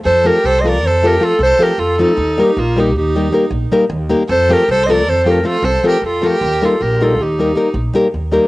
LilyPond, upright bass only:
\new Staff \with { instrumentName = "Upright bass" } { \clef bass \time 11/8 \key f \mixolydian \tempo 4 = 156 f,4 c,4 f,4. c,8 r8 f,4 | ees,4 bes,,4 ees,4. bes,,8 r8 ees,4 | f,4 c,4 f,4. c,8 r8 f,4 | ees,4 bes,,4 ees,4. bes,,8 r8 ees,4 | }